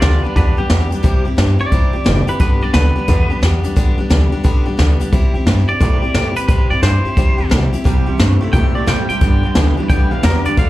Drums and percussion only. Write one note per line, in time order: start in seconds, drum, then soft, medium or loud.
0.02 snare loud
0.02 closed hi-hat medium
0.36 kick loud
0.36 closed hi-hat medium
0.70 snare loud
0.70 closed hi-hat medium
0.92 closed hi-hat medium
1.04 kick loud
1.04 closed hi-hat medium
1.38 snare loud
1.38 closed hi-hat medium
1.72 kick loud
1.72 closed hi-hat medium
2.06 snare loud
2.06 closed hi-hat medium
2.28 closed hi-hat medium
2.40 kick loud
2.40 closed hi-hat medium
2.74 snare loud
2.74 closed hi-hat medium
3.08 kick loud
3.08 closed hi-hat medium
3.43 snare loud
3.43 closed hi-hat medium
3.64 closed hi-hat medium
3.77 kick loud
3.77 closed hi-hat medium
4.10 snare loud
4.10 closed hi-hat medium
4.45 kick loud
4.45 closed hi-hat medium
4.79 snare loud
4.79 closed hi-hat medium
5.00 closed hi-hat medium
5.12 kick loud
5.12 closed hi-hat medium
5.47 snare loud
5.47 closed hi-hat medium
5.80 kick loud
5.80 closed hi-hat medium
6.14 snare loud
6.14 closed hi-hat medium
6.36 closed hi-hat medium
6.48 kick loud
6.48 closed hi-hat medium
6.83 snare loud
6.83 closed hi-hat medium
7.17 kick loud
7.17 closed hi-hat medium
7.51 snare loud
7.51 closed hi-hat medium
7.73 closed hi-hat medium
7.85 kick loud
7.85 closed hi-hat medium
8.19 snare loud
8.19 closed hi-hat medium
8.53 kick loud
8.53 closed hi-hat medium
8.87 snare loud
8.87 closed hi-hat medium
9.09 closed hi-hat medium
9.21 kick loud
9.21 closed hi-hat medium
9.55 snare loud
9.55 closed hi-hat medium
9.89 kick loud
9.89 closed hi-hat medium
10.23 snare loud
10.23 closed hi-hat medium
10.45 closed hi-hat medium
10.57 kick loud
10.57 closed hi-hat medium